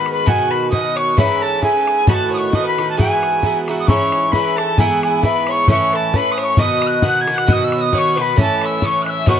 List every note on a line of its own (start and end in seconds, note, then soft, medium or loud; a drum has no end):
0.00 0.25 G#2 medium
0.00 0.25 D#3 medium
0.00 0.26 B3 medium
0.00 0.26 F#4 medium
0.00 0.11 B5 medium
0.06 bodhran medium
0.12 0.29 B4 medium
0.12 0.29 B5 medium
0.26 0.70 B2 medium
0.26 0.71 D#3 medium
0.26 0.71 B3 medium
0.26 0.72 F#4 loud
0.26 0.52 G#4 medium
0.26 0.52 G#5 loud
0.26 bodhran medium
0.50 0.74 B4 medium
0.50 0.69 B5 medium
0.70 1.17 B2 medium
0.70 1.17 D#3 medium
0.70 1.17 B3 medium
0.70 1.18 F#4 medium
0.70 0.97 D#5 medium
0.70 0.99 D#6 medium
0.70 bodhran medium
0.96 1.17 C#5 medium
0.96 1.19 C#6 medium
0.96 bodhran medium
1.17 1.61 G#2 medium
1.17 1.62 E3 medium
1.17 1.63 C#4 medium
1.17 1.63 E4 loud
1.17 1.42 B4 medium
1.17 1.43 B5 medium
1.17 bodhran medium
1.41 1.63 A4 medium
1.41 1.62 A5 medium
1.62 2.07 G#2 medium
1.62 2.08 E3 medium
1.62 2.08 C#4 medium
1.62 2.08 E4 medium
1.62 1.79 G#4 medium
1.62 2.10 G#5 medium
1.62 bodhran medium
1.77 1.92 A4 medium
1.87 2.08 G#4 medium
1.87 bodhran medium
2.07 2.51 A2 medium
2.07 2.52 D#3 medium
2.07 2.53 B3 medium
2.07 2.53 F#4 loud
2.07 2.32 A4 medium
2.07 2.13 B5 loud
2.07 bodhran medium
2.12 2.32 A5 loud
2.31 2.51 C#5 medium
2.31 2.38 D#6 medium
2.37 2.56 C#6 medium
2.52 2.76 A2 medium
2.52 2.77 D#3 medium
2.52 2.78 B3 medium
2.52 2.79 F#4 medium
2.52 2.65 D#5 medium
2.52 2.66 D#6 loud
2.52 bodhran medium
2.64 2.99 B4 medium
2.64 2.87 B5 medium
2.77 2.97 A2 soft
2.77 2.98 D#3 medium
2.77 2.97 B3 medium
2.77 2.98 F#4 medium
2.77 bodhran soft
2.89 2.98 A5 medium
2.97 3.42 G#2 medium
2.97 3.43 E3 medium
2.97 3.43 B3 medium
2.97 3.44 F#4 medium
2.97 3.67 G#4 medium
2.97 3.09 G5 medium
2.97 bodhran medium
3.09 3.57 G#5 medium
3.23 bodhran soft
3.43 3.67 G#2 medium
3.43 3.68 E3 medium
3.43 3.68 B3 medium
3.43 3.69 F#4 medium
3.43 bodhran medium
3.68 3.87 G#2 medium
3.68 3.87 E3 medium
3.68 3.88 B3 medium
3.68 3.89 F#4 medium
3.68 bodhran medium
3.80 3.88 D#6 medium
3.87 4.32 G#2 medium
3.87 4.34 E3 medium
3.87 4.33 C#4 medium
3.87 4.35 E4 medium
3.87 4.30 C#5 medium
3.87 4.33 C#6 loud
3.87 bodhran medium
4.12 bodhran medium
4.31 4.77 G#2 medium
4.31 4.78 E3 medium
4.31 4.79 C#4 medium
4.31 4.79 E4 medium
4.31 4.59 B4 medium
4.31 4.58 B5 medium
4.31 bodhran medium
4.56 4.79 A4 medium
4.56 4.80 A5 medium
4.56 bodhran medium
4.78 5.21 G#2 medium
4.78 5.22 E3 medium
4.78 5.23 B3 medium
4.78 5.23 E4 loud
4.78 5.02 G#4 medium
4.78 5.02 G#5 loud
4.78 bodhran medium
5.03 5.26 G#4 medium
5.03 5.22 G#5 medium
5.03 bodhran medium
5.22 5.67 G#2 medium
5.22 5.67 E3 medium
5.22 5.68 B3 medium
5.22 5.69 E4 medium
5.22 5.50 B4 medium
5.22 5.52 B5 medium
5.22 bodhran medium
5.47 5.68 C#5 medium
5.47 5.69 C#6 loud
5.47 bodhran medium
5.68 6.12 A2 medium
5.68 6.13 E3 medium
5.68 6.13 C#4 medium
5.68 6.14 E4 medium
5.68 5.95 C#5 medium
5.68 5.96 C#6 loud
5.68 bodhran medium
5.93 6.13 A4 medium
5.93 6.17 A5 medium
5.93 bodhran medium
6.14 6.57 A2 medium
6.14 6.58 E3 medium
6.14 6.58 C#4 medium
6.14 6.59 E4 medium
6.14 6.39 B4 medium
6.14 6.33 B5 loud
6.14 bodhran medium
6.31 6.40 D#6 medium
6.38 6.60 C#5 medium
6.38 6.44 D#6 medium
6.38 bodhran medium
6.43 6.62 C#6 loud
6.57 7.02 B2 medium
6.57 7.02 D#3 medium
6.57 7.03 B3 loud
6.57 7.03 F#4 medium
6.57 7.04 D#5 medium
6.57 6.88 D#6 loud
6.57 bodhran medium
6.82 bodhran medium
6.86 7.05 F#6 loud
7.02 7.25 B2 medium
7.02 7.26 D#3 medium
7.02 7.27 B3 medium
7.02 7.28 F#4 medium
7.02 7.18 F#5 medium
7.02 bodhran medium
7.06 7.22 F#6 medium
7.21 7.37 G#6 medium
7.27 7.46 B2 medium
7.27 7.47 D#3 medium
7.27 7.47 B3 soft
7.27 7.48 F#4 medium
7.27 bodhran medium
7.33 7.49 F#5 medium
7.33 7.53 F#6 medium
7.38 bodhran medium
7.47 7.91 B2 medium
7.47 7.92 D#3 medium
7.47 7.92 B3 medium
7.47 7.93 F#4 medium
7.47 7.63 D#5 medium
7.47 bodhran medium
7.52 7.65 D#6 loud
7.64 7.82 E6 medium
7.72 7.79 C#5 medium
7.72 bodhran medium
7.77 7.94 D#5 medium
7.77 7.99 D#6 loud
7.92 8.15 B2 medium
7.92 8.16 D#3 medium
7.92 8.17 B3 medium
7.92 8.18 F#4 medium
7.92 8.17 C#5 medium
7.92 bodhran medium
7.98 8.22 C#6 loud
8.16 8.36 B2 medium
8.16 8.37 D#3 soft
8.16 8.37 B3 medium
8.16 8.38 F#4 medium
8.16 8.38 B4 medium
8.16 bodhran medium
8.21 8.39 B5 medium
8.36 8.80 A2 medium
8.36 8.81 E3 medium
8.36 8.82 C#4 medium
8.36 8.83 E4 medium
8.36 8.63 A4 medium
8.36 bodhran medium
8.40 8.66 A5 loud
8.61 8.84 E5 medium
8.61 8.87 E6 loud
8.61 bodhran medium
8.82 9.26 A2 medium
8.82 9.27 E3 medium
8.82 9.27 C#4 medium
8.82 9.28 E4 medium
8.82 9.06 C#5 medium
8.82 9.03 C#6 loud
8.82 bodhran medium
9.02 9.10 F#6 medium
9.06 9.28 E5 loud
9.06 9.30 E6 medium
9.06 bodhran soft
9.27 9.40 B2 medium
9.27 9.40 D#3 medium
9.27 9.40 B3 medium
9.27 9.40 F#4 medium
9.27 9.40 C#5 medium
9.27 9.40 C#6 loud
9.27 bodhran medium